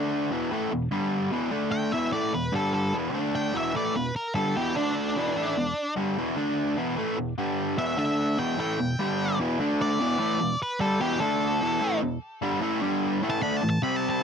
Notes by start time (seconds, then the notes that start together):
Already playing: D3 A3 D4
0.31 E2 B2 E3
0.51 A2 E3 A3
0.71 E2 B2
0.91 G2 D3 G3
1.32 E2 B2 E3
1.51 D3 A3 D4
1.72 G5
1.92 E2 B2 E3 E5
2.12 A2 E3 A3 D5
2.33 E2 B2 B4
2.52 G2 D3 G3 A4
2.74 A4
2.94 E2 B2 E3
3.14 D3 A3 D4
3.35 G5
3.53 E2 B2 E3 E5
3.74 A2 E3 A3 D5
3.95 E2 B2 B4
4.16 A#4
4.35 G2 D3 G3 A4
4.56 E2 B2 E3 G4
4.76 D3 A3 D4
5.16 E2 B2 E3
5.36 A2 E3 A3
5.57 E2 B2
5.96 G2 D3 G3
6.17 E2 B2 E3
6.37 D3 A3 D4
6.77 E2 B2 E3
6.97 A2 E3 A3
7.17 E2 B2
7.38 G2 D3 G3
7.78 E2 B2 E3 E5
7.97 D3 A3 D4 E5
8.38 E2 B2 E3 G5
8.58 A2 E3 A3 G5
8.79 E2 B2
8.99 G2 D3 G3
9.39 E2 B2 E3
9.59 D3 A3 D4
9.82 D5
10.00 E2 B2 E3
10.19 A2 E3 A3
10.40 E2 B2
10.62 B4
10.80 G2 D3 G3 A4
11.01 E2 B2 E3 G4
11.20 D3 A3 D4 A4
11.61 E2 B2 E3
11.80 A2 E3 A3
12.02 E2 B2
12.42 G2 D3 G3
12.61 A2 E3 A3
12.81 G2 D3 G3
13.22 A2 E3 A3
13.30 A5
13.42 D3 A3 D4 B5
13.57 A5
13.62 A2 E3
13.70 A5
13.82 C3 G3 C4 B5
13.96 A5
14.10 A5